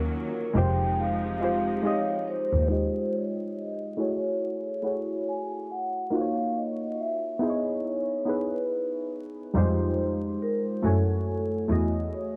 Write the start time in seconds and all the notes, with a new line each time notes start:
Already playing: D#3 F#3 A#3 C#4 D#4 F4 F#4 A#4 C#5
0.54 F1 C3 F3 G#3 D#4 F4 G4
0.58 C5 G5
1.00 F5
1.40 G#3 D#4 F4 G4
1.44 C5
1.83 G#3 D#4 F4 G4 C#5
1.87 D#5
2.28 C5
2.53 D#2
2.68 G#3 D#4 F4 G4 C5
2.72 D#5
3.14 C#5
3.58 D#5
3.94 A3 D#5
3.98 E4 F#4 G#4 C#5
4.82 A3 E4 F#4 G#4
4.86 C#5
5.29 G#5
5.72 F#5
6.10 A#3 D#4 F4 F#4 F5
6.15 C5
6.21 C#5
6.58 D#5
7.00 E5
7.39 B3 D#4 E4 G#4 D#5
7.43 C5
7.50 C#5
7.86 C#5
8.25 B3 D#4 E4 G#4
8.29 B4
8.54 B4
9.54 F2 G3 D#4 F4 G4
9.58 G#3 C5
10.42 A#4
10.82 F#2 A3 E4 F#4 A4 G#5
10.87 C#5
11.68 E2 A3 E4 F#4 G#4
11.72 D#5
12.14 C#5